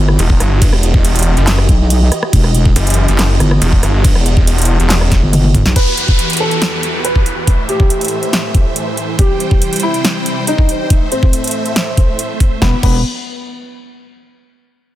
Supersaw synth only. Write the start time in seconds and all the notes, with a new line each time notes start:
Already playing: E3 E4 F#4 G4 D#5
5.76 E2 E3 F#4 G4 B4
7.47 A2 E3 A3 C5 E5
9.19 C3 G3 G5
10.90 A2 A3 E5
12.62 E3 B3 F#4 G4 E5